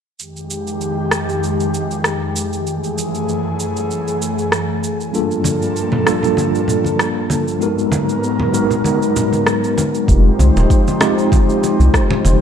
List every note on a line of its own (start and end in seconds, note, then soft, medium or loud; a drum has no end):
0.18 2.64 F2 medium
0.18 2.64 D#3 medium
0.18 2.64 G#3 medium
0.18 2.64 G4 medium
0.18 cabasa soft
0.36 cabasa soft
0.50 cabasa medium
0.67 cabasa soft
0.81 cabasa soft
1.11 cross-stick medium
1.11 cabasa medium
1.29 cabasa soft
1.43 cabasa soft
1.60 cabasa soft
1.74 cabasa medium
1.91 cabasa soft
2.04 cross-stick medium
2.04 cabasa soft
2.36 cabasa medium
2.53 cabasa soft
2.66 5.11 F#2 medium
2.66 5.11 E3 medium
2.66 5.11 A3 medium
2.66 5.11 G#4 medium
2.66 cabasa soft
2.84 cabasa soft
2.98 cabasa medium
3.15 cabasa soft
3.29 cabasa soft
3.60 cabasa medium
3.77 cabasa soft
3.91 cabasa soft
4.08 cabasa soft
4.22 cabasa medium
4.39 cabasa soft
4.52 cross-stick medium
4.52 cabasa soft
4.84 cabasa medium
5.00 cabasa soft
5.12 7.58 G2 medium
5.12 7.58 F3 medium
5.12 6.02 G3 medium
5.12 6.02 A#3 medium
5.12 7.58 A#3 medium
5.12 6.03 D4 medium
5.12 6.03 F4 medium
5.12 7.58 A4 medium
5.12 6.04 A4 medium
5.12 cabasa soft
5.31 cabasa soft
5.44 high conga medium
5.44 cabasa medium
5.62 cabasa soft
5.76 cabasa soft
5.92 high conga medium
5.92 low conga loud
6.05 6.23 G3 medium
6.05 6.23 A#3 medium
6.05 6.23 D4 medium
6.05 6.23 F4 medium
6.05 6.23 A4 loud
6.05 cross-stick medium
6.05 cabasa medium
6.23 low conga medium
6.23 cabasa soft
6.37 high conga medium
6.37 cabasa soft
6.55 cabasa soft
6.68 low conga medium
6.68 cabasa medium
6.84 high conga medium
6.84 cabasa soft
6.99 cross-stick medium
6.99 cabasa soft
7.30 high conga medium
7.30 cabasa medium
7.48 cabasa soft
7.59 10.06 G#2 medium
7.59 10.06 F#3 medium
7.59 8.49 G#3 medium
7.59 8.50 B3 medium
7.59 10.06 B3 medium
7.59 8.50 D#4 medium
7.59 8.51 F#4 medium
7.59 10.06 A#4 medium
7.59 8.51 A#4 medium
7.59 cabasa soft
7.78 cabasa soft
7.92 high conga medium
7.92 cabasa medium
8.09 cabasa soft
8.23 cabasa soft
8.39 high conga medium
8.39 low conga medium
8.53 8.70 G#3 medium
8.53 8.70 B3 medium
8.53 8.70 D#4 medium
8.53 8.71 F#4 medium
8.53 8.71 A#4 loud
8.53 cabasa medium
8.71 low conga medium
8.71 cabasa soft
8.84 high conga medium
8.84 cabasa soft
9.02 cabasa soft
9.16 low conga medium
9.16 cabasa medium
9.33 high conga medium
9.33 cabasa soft
9.47 cross-stick medium
9.47 cabasa soft
9.64 cabasa soft
9.78 high conga medium
9.78 cabasa medium
9.95 cabasa soft
10.07 10.30 F1 loud
10.07 12.41 F3 medium
10.07 10.97 G#3 medium
10.07 10.97 C4 medium
10.07 10.98 D#4 medium
10.07 12.41 D#4 medium
10.07 10.98 F4 medium
10.07 12.41 G4 medium
10.07 10.99 G4 medium
10.07 12.41 C5 medium
10.07 kick medium
10.07 cabasa soft
10.39 10.51 C2 medium
10.39 high conga medium
10.39 cabasa medium
10.56 10.66 D#1 medium
10.56 muted conga medium
10.56 cabasa soft
10.70 kick medium
10.70 cabasa soft
10.88 high conga medium
10.88 cabasa soft
11.00 11.17 G#3 medium
11.00 11.18 C4 medium
11.00 11.18 D#4 medium
11.00 11.18 F4 medium
11.00 11.18 G4 loud
11.00 cross-stick medium
11.00 muted conga medium
11.00 cabasa medium
11.18 cabasa soft
11.32 kick loud
11.32 high conga medium
11.32 cabasa soft
11.49 cabasa soft
11.64 muted conga soft
11.64 cabasa medium
11.80 11.89 C2 medium
11.80 high conga medium
11.80 cabasa soft
11.94 kick medium
11.94 cross-stick medium
11.94 cabasa soft
12.10 muted conga medium
12.10 low conga medium
12.25 12.36 F1 medium
12.25 high conga medium
12.25 cabasa medium